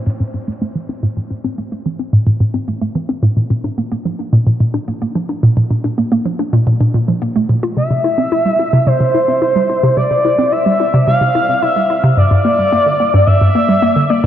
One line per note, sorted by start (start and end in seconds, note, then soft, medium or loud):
0.07 0.15 A2 medium
0.20 0.29 A2 medium
0.34 0.47 C4 medium
0.48 0.57 A3 medium
0.62 0.75 A3 medium
0.75 0.84 E3 medium
0.89 0.98 C4 medium
1.03 1.08 A2 loud
1.17 1.25 A2 medium
1.31 1.39 A2 medium
1.44 1.57 C4 medium
1.58 1.67 A3 medium
1.72 1.85 A3 medium
1.86 1.94 E3 medium
1.99 2.08 C4 medium
2.13 2.18 A2 loud
2.27 2.35 A2 medium
2.40 2.49 A2 medium
2.54 2.67 C4 medium
2.68 2.77 A3 medium
2.81 2.95 A3 medium
2.95 3.04 E3 medium
3.09 3.18 C4 medium
3.23 3.28 A2 loud
3.37 3.45 A#2 medium
3.50 3.59 A#2 medium
3.64 3.77 D4 medium
3.78 3.87 A#3 medium
3.92 4.05 A#3 medium
4.05 4.14 F3 medium
4.19 4.28 D4 medium
4.33 4.38 A#2 loud
4.47 4.55 A#2 medium
4.60 4.69 A#2 medium
4.74 4.87 D4 medium
4.88 4.97 A#3 medium
5.02 5.15 A#3 medium
5.16 5.24 F3 medium
5.29 5.38 D4 medium
5.43 5.48 A#2 loud
5.57 5.66 A#2 medium
5.71 5.79 A#2 medium
5.84 5.97 D4 medium
5.98 6.07 A#3 medium
6.12 6.25 A#3 medium
6.25 6.34 F3 medium
6.39 6.48 D4 medium
6.53 6.58 A#2 loud
6.67 6.76 A#2 medium
6.81 6.89 A#2 medium
6.94 7.08 A#2 medium
7.08 7.13 F3 medium
7.22 7.27 A#3 medium
7.36 7.49 A3 medium
7.49 7.55 A#2 medium
7.63 7.76 F4 medium
7.77 7.86 C3 medium
7.77 8.88 E5 loud
7.91 7.99 C3 medium
8.04 8.18 E4 medium
8.18 8.27 C4 medium
8.32 8.45 E4 medium
8.46 8.54 G3 medium
8.59 8.68 E4 medium
8.73 8.79 C3 loud
8.87 8.96 C3 medium
8.87 9.96 C5 loud
9.01 9.09 C3 medium
9.14 9.28 E4 medium
9.28 9.37 C4 medium
9.42 9.55 E4 medium
9.56 9.65 G3 medium
9.70 9.78 E4 medium
9.83 9.89 C3 loud
9.97 10.06 C3 medium
9.97 10.53 D5 loud
10.11 10.20 C3 medium
10.25 10.38 E4 medium
10.39 10.47 C4 medium
10.52 10.65 E4 medium
10.52 11.06 E5 loud
10.66 10.75 G3 medium
10.80 10.89 E4 medium
10.94 10.99 C3 loud
11.06 11.16 C3 medium
11.06 11.63 F5 loud
11.21 11.30 C3 medium
11.35 11.48 E4 medium
11.49 11.57 C4 medium
11.62 11.75 E4 medium
11.62 12.03 E5 loud
11.76 11.85 G3 medium
11.90 11.99 E4 medium
12.04 12.09 C3 loud
12.17 12.26 G2 medium
12.17 13.28 D5 loud
12.31 12.40 G2 medium
12.45 12.58 A#3 medium
12.59 12.67 G3 medium
12.72 12.86 A#3 medium
12.86 12.95 D3 medium
13.00 13.09 A#3 medium
13.14 13.19 G2 loud
13.26 13.36 G2 medium
13.26 14.11 E5 loud
13.41 13.50 G2 medium
13.55 13.68 A#3 medium
13.69 13.78 G3 medium
13.82 13.96 A#3 medium
13.96 14.05 D3 medium
14.09 14.19 A#3 medium
14.09 14.26 D5 loud